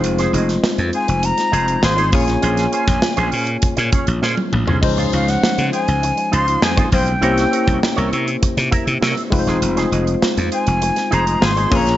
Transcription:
<<
  \new Staff \with { instrumentName = "Flute" } { \time 4/4 \key f \phrygian \tempo 4 = 100 r4. aes''8 bes''4 c'''8 aes''8~ | aes''2~ aes''8 r4. | r8 f''16 ges''8. aes''4 c'''8 aes''8 g''8~ | g''4. r2 r8 |
r4. aes''4 bes''8 c'''8 bes''8 | }
  \new Staff \with { instrumentName = "Clean electric guitar" } { \time 4/4 \key f \phrygian r16 <ees' aes' c''>16 <ees' aes' ees''>16 r4. r16 <ees' aes' c''>16 <ees' aes' c''>16 r16 <ees' aes' c''>16 r8 | <des' aes' c''>16 r16 <des' aes' c''>16 <des' aes' c''>16 r16 <des' aes' c''>16 <des' aes' c''>16 r8 <des' aes' des''>16 <des' aes' des''>16 r16 <des' aes' c''>16 r8 <des' aes' c''>16 | r16 <ees' f' c''>16 <ees' f' des''>16 r4. r16 <ees' f' c''>16 <ees' f' c''>16 r16 <ees' f' c''>16 r8 | <e' bes' des''>16 r16 <e' bes' des''>16 <e' bes' des''>16 r16 <e' bes' des''>16 <e' bes' des''>16 r8. <e' bes' e''>16 r16 <e' bes' des''>16 r8 <ees' aes' c''>16 |
r16 <ees' aes' c''>16 <ees' aes' ees''>16 r4. r16 <ees' aes' c''>16 <ees' aes' c''>16 r16 <ees' aes' c''>16 r8 | }
  \new Staff \with { instrumentName = "Horn section" } { \time 4/4 \key f \phrygian r4. <c' f' aes' c''>16 r4 r16 <c' f' aes' c''>16 r16 <des' f' aes' des''>8 | r1 | r4. <c' f' aes' c''>16 r4 r16 <c' f' aes' c''>16 r16 <c' f' aes' c''>8 | r1 |
r4. <c' f' aes' c''>16 r4 r16 <c' f' aes' c''>16 r16 <des' f' aes' des''>8 | }
  \new Staff \with { instrumentName = "Tine electric piano" } { \time 4/4 \key f \phrygian <aes c' ees' f' c''>2.~ <aes c' ees' f' c''>8 <bes des' f' aes' des''>8~ | <bes des' f' aes' des''>2.~ <bes des' f' aes' des''>8 r8 | <f aes des' ees' c''>1 | <bes des' e' g' c''>2.~ <bes des' e' g' c''>8 <aes c' ees' f' ces'' c''>8~ |
<aes c' ees' f' ces'' c''>2.~ <aes c' ees' f' ces'' c''>8 <bes des' f' aes' ces'' des''>8 | }
  \new Staff \with { instrumentName = "Slap bass" } { \clef bass \time 4/4 \key f \phrygian f,,8 f,,8 r16 f,16 r16 f,,8 r16 f,,8 aes,,8 bes,,8 | bes,,8 r16 bes,,16 r16 bes,,16 bes,8 r16 bes,16 r16 bes,,16 bes,16 r16 bes,,16 c,16 | des,8 des,8 r16 des16 r16 des,8 r16 des,8 f,8 ces,8 | c,8 r16 c,16 r16 c,16 c8 r16 c16 r16 c16 c16 r16 f,,16 e,,16 |
f,,8 f,,8 r16 f,16 r16 f,,8 r16 f,,8 aes,,8 bes,,8 | }
  \new DrumStaff \with { instrumentName = "Drums" } \drummode { \time 4/4 hh16 <hh sn>16 hh16 <hh sn>16 sn16 hh16 hh16 hh16 hh16 <hh sn>16 hh16 hh16 sn16 hh16 <hho bd>16 <hh sn>16 | hh16 <hh sn>16 hh16 <hh bd sn>16 sn16 hh16 hho16 hh16 <hh bd>16 <hh sn>16 <hh bd>16 hh16 sn16 tommh16 toml16 tomfh16 | <cymc bd>16 <hh sn>16 hh16 <hh sn>16 sn16 hh16 hh16 hh16 hh16 hh16 hh16 hh16 sn16 <hh bd>16 <hho bd>16 hh16 | hh16 <hh sn>16 hh16 <hh bd>16 sn16 hh16 hh16 hh16 <hh bd>16 <hh sn>16 <hh bd>16 hh16 sn16 hh16 <hho bd>16 <hh sn>16 |
hh16 <hh sn>16 hh16 hh16 sn16 hh16 hh16 hh16 hh16 <hh sn>16 hh16 hh16 sn16 hh16 <hho bd>16 <hh sn>16 | }
>>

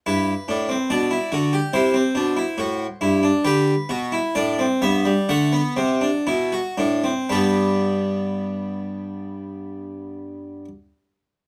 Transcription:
<<
  \new Staff \with { instrumentName = "Harpsichord" } { \time 4/4 \key g \major \tempo 4 = 63 << { b'4 d''4 c''2 | b'4 d''8 e''8 fis''2 | <g b b'>1 | } \\ { e'8 d'16 c'16 d'16 e'16 fis'16 g'16 e'16 c'16 d'16 e'16 fis'8 e'16 d'16 | g'8 fis'16 e'16 d'16 c'16 b16 g16 a16 b16 c'16 d'16 e'16 fis'16 d'16 c'16 | d'1 | } >> }
  \new Staff \with { instrumentName = "Harpsichord" } { \clef bass \time 4/4 \key g \major g,8 a,8 b,8 d8 c8 b,8 a,8 g,8 | d8 b,8 a,8 g,8 d8 c8 b,8 a,8 | g,1 | }
>>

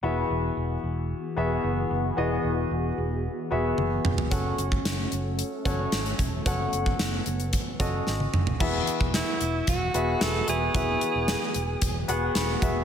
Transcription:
<<
  \new Staff \with { instrumentName = "Alto saxophone" } { \time 4/4 \key e \major \tempo 4 = 112 r1 | r1 | r1 | r1 |
r4 e'4 fis'4 a'8 gis'8~ | gis'2~ gis'8 r4. | }
  \new Staff \with { instrumentName = "Grand piano" } { \time 4/4 \key e \major <b fis' gis' e''>4. r4 <b fis' gis' e''>4 r8 | <b fis' gis' dis''>4. r4 <b fis' gis' e''>4 r8 | <cis' fis' a' fis''>4. r4 <cis' fis' a' cis''>4 r8 | <cis' fis' a' fis''>4. r4 <cis' fis' a' dis''>4 r8 |
<b fis' gis' e''>4. r4 <b fis' gis' e''>8 r8 <b fis' gis' e''>8 | <b fis' gis' e''>4. r4 <b fis' gis' fis''>8 r8 <b fis' gis' e''>8 | }
  \new Staff \with { instrumentName = "Grand piano" } { \clef bass \time 4/4 \key e \major e4. r2 r8 | e4. r2 r8 | r1 | r1 |
e4. r2 r8 | e4. r4. b''4 | }
  \new Staff \with { instrumentName = "Analog synth pad" } { \time 4/4 \key e \major << { <e fis' gis'>1~ | <e fis' gis'>1 | cis'1 | b1 |
r1 | r1 | } \\ { b1~ | b1 | a1~ | a1 |
r1 | r1 | } >> }
  \new Staff \with { instrumentName = "Fingered electric bass" } { \clef bass \time 4/4 \key e \major e,,8 e,,8 e,,8 e,,8. r16 e,,8 fis,,8 fis,,8 | e,,8 e,,8 e,,8 e,,8. r16 e,,8 fis,,8 e,,8 | fis,,8 fis,,8 fis,,8 fis,,8. r16 fis,,8 gis,,8 e,,8 | fis,,8 fis,,8 fis,,8 fis,,8. r16 fis,,8 gis,,8 fis,,8 |
e,,8 r16 e,,8 r16 e,,8 e,,8 e,,8 e,,8 e,,8 | e,,8 r16 e,,8 r16 e,,8 e,,8 e,,8 e,,8 e,,8 | }
  \new DrumStaff \with { instrumentName = "Drums" } \drummode { \time 4/4 r4 r4 r4 r4 | r4 r4 r4 tommh8 toml16 tomfh16 | <hh bd>8 hh16 bd16 <hh sn>8 hh8 hh8 <hh bd>8 <hh sn>16 hh16 <hh bd>8 | <hh bd>8 hh16 bd16 <hh sn>8 hh16 hh16 <hh bd>8 <hh bd>8 sn16 tommh16 toml16 tomfh16 |
<cymc bd>8 hh16 bd16 <hh sn>8 hh8 <hh bd>8 hh8 <hh sn>8 hh8 | <hh bd>8 hh8 <hh sn>8 hh8 <hh bd>8 hh8 <hh sn>8 <hh bd>8 | }
>>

